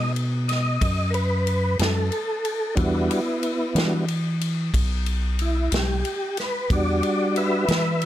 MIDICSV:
0, 0, Header, 1, 4, 480
1, 0, Start_track
1, 0, Key_signature, 1, "minor"
1, 0, Tempo, 655022
1, 2034, Time_signature, 12, 3, 24, 8
1, 5902, End_track
2, 0, Start_track
2, 0, Title_t, "Tonewheel organ"
2, 0, Program_c, 0, 16
2, 0, Note_on_c, 0, 75, 96
2, 92, Note_off_c, 0, 75, 0
2, 354, Note_on_c, 0, 75, 96
2, 809, Note_on_c, 0, 70, 67
2, 820, Note_off_c, 0, 75, 0
2, 837, Note_off_c, 0, 70, 0
2, 839, Note_on_c, 0, 71, 100
2, 1302, Note_off_c, 0, 71, 0
2, 1317, Note_on_c, 0, 69, 94
2, 2013, Note_off_c, 0, 69, 0
2, 2018, Note_on_c, 0, 62, 52
2, 2022, Note_on_c, 0, 55, 53
2, 2026, Note_on_c, 0, 66, 64
2, 2028, Note_on_c, 0, 59, 89
2, 2038, Note_on_c, 0, 64, 96
2, 2344, Note_off_c, 0, 62, 0
2, 2346, Note_off_c, 0, 55, 0
2, 2349, Note_off_c, 0, 66, 0
2, 2754, Note_on_c, 0, 55, 54
2, 2754, Note_on_c, 0, 62, 50
2, 2757, Note_on_c, 0, 66, 52
2, 2961, Note_off_c, 0, 59, 0
2, 2967, Note_off_c, 0, 64, 0
2, 2969, Note_off_c, 0, 62, 0
2, 2970, Note_off_c, 0, 55, 0
2, 2971, Note_off_c, 0, 66, 0
2, 3969, Note_on_c, 0, 64, 99
2, 4194, Note_off_c, 0, 64, 0
2, 4225, Note_on_c, 0, 67, 95
2, 4675, Note_off_c, 0, 67, 0
2, 4689, Note_on_c, 0, 71, 88
2, 4912, Note_on_c, 0, 55, 53
2, 4915, Note_off_c, 0, 71, 0
2, 4925, Note_on_c, 0, 62, 52
2, 4929, Note_on_c, 0, 66, 61
2, 4930, Note_on_c, 0, 74, 98
2, 5388, Note_off_c, 0, 74, 0
2, 5403, Note_on_c, 0, 71, 89
2, 5403, Note_on_c, 0, 76, 90
2, 5604, Note_off_c, 0, 55, 0
2, 5611, Note_off_c, 0, 62, 0
2, 5613, Note_off_c, 0, 66, 0
2, 5902, Note_off_c, 0, 71, 0
2, 5902, Note_off_c, 0, 76, 0
2, 5902, End_track
3, 0, Start_track
3, 0, Title_t, "Fingered electric bass"
3, 0, Program_c, 1, 33
3, 0, Note_on_c, 1, 47, 101
3, 563, Note_off_c, 1, 47, 0
3, 599, Note_on_c, 1, 42, 99
3, 1287, Note_off_c, 1, 42, 0
3, 1312, Note_on_c, 1, 42, 99
3, 1534, Note_off_c, 1, 42, 0
3, 2030, Note_on_c, 1, 40, 110
3, 2252, Note_off_c, 1, 40, 0
3, 2747, Note_on_c, 1, 52, 104
3, 3441, Note_off_c, 1, 52, 0
3, 3470, Note_on_c, 1, 35, 96
3, 4163, Note_off_c, 1, 35, 0
3, 4190, Note_on_c, 1, 35, 104
3, 4412, Note_off_c, 1, 35, 0
3, 4909, Note_on_c, 1, 40, 102
3, 5132, Note_off_c, 1, 40, 0
3, 5630, Note_on_c, 1, 52, 107
3, 5902, Note_off_c, 1, 52, 0
3, 5902, End_track
4, 0, Start_track
4, 0, Title_t, "Drums"
4, 118, Note_on_c, 9, 51, 57
4, 191, Note_off_c, 9, 51, 0
4, 358, Note_on_c, 9, 51, 66
4, 376, Note_on_c, 9, 38, 33
4, 431, Note_off_c, 9, 51, 0
4, 449, Note_off_c, 9, 38, 0
4, 596, Note_on_c, 9, 36, 87
4, 597, Note_on_c, 9, 51, 79
4, 670, Note_off_c, 9, 36, 0
4, 670, Note_off_c, 9, 51, 0
4, 836, Note_on_c, 9, 51, 56
4, 909, Note_off_c, 9, 51, 0
4, 1076, Note_on_c, 9, 51, 60
4, 1149, Note_off_c, 9, 51, 0
4, 1314, Note_on_c, 9, 51, 74
4, 1332, Note_on_c, 9, 38, 110
4, 1387, Note_off_c, 9, 51, 0
4, 1406, Note_off_c, 9, 38, 0
4, 1552, Note_on_c, 9, 51, 55
4, 1625, Note_off_c, 9, 51, 0
4, 1794, Note_on_c, 9, 51, 61
4, 1867, Note_off_c, 9, 51, 0
4, 2029, Note_on_c, 9, 51, 85
4, 2031, Note_on_c, 9, 36, 107
4, 2102, Note_off_c, 9, 51, 0
4, 2104, Note_off_c, 9, 36, 0
4, 2277, Note_on_c, 9, 51, 72
4, 2350, Note_off_c, 9, 51, 0
4, 2512, Note_on_c, 9, 51, 61
4, 2585, Note_off_c, 9, 51, 0
4, 2754, Note_on_c, 9, 51, 81
4, 2772, Note_on_c, 9, 38, 109
4, 2827, Note_off_c, 9, 51, 0
4, 2846, Note_off_c, 9, 38, 0
4, 2992, Note_on_c, 9, 51, 64
4, 3066, Note_off_c, 9, 51, 0
4, 3235, Note_on_c, 9, 51, 70
4, 3308, Note_off_c, 9, 51, 0
4, 3471, Note_on_c, 9, 36, 86
4, 3474, Note_on_c, 9, 51, 94
4, 3545, Note_off_c, 9, 36, 0
4, 3547, Note_off_c, 9, 51, 0
4, 3710, Note_on_c, 9, 51, 59
4, 3783, Note_off_c, 9, 51, 0
4, 3949, Note_on_c, 9, 51, 59
4, 4022, Note_off_c, 9, 51, 0
4, 4190, Note_on_c, 9, 51, 83
4, 4208, Note_on_c, 9, 38, 121
4, 4263, Note_off_c, 9, 51, 0
4, 4282, Note_off_c, 9, 38, 0
4, 4432, Note_on_c, 9, 51, 61
4, 4505, Note_off_c, 9, 51, 0
4, 4669, Note_on_c, 9, 51, 61
4, 4687, Note_on_c, 9, 38, 34
4, 4742, Note_off_c, 9, 51, 0
4, 4761, Note_off_c, 9, 38, 0
4, 4910, Note_on_c, 9, 51, 75
4, 4911, Note_on_c, 9, 36, 109
4, 4984, Note_off_c, 9, 36, 0
4, 4984, Note_off_c, 9, 51, 0
4, 5151, Note_on_c, 9, 51, 59
4, 5225, Note_off_c, 9, 51, 0
4, 5393, Note_on_c, 9, 51, 61
4, 5466, Note_off_c, 9, 51, 0
4, 5631, Note_on_c, 9, 51, 77
4, 5649, Note_on_c, 9, 38, 111
4, 5704, Note_off_c, 9, 51, 0
4, 5722, Note_off_c, 9, 38, 0
4, 5874, Note_on_c, 9, 51, 62
4, 5902, Note_off_c, 9, 51, 0
4, 5902, End_track
0, 0, End_of_file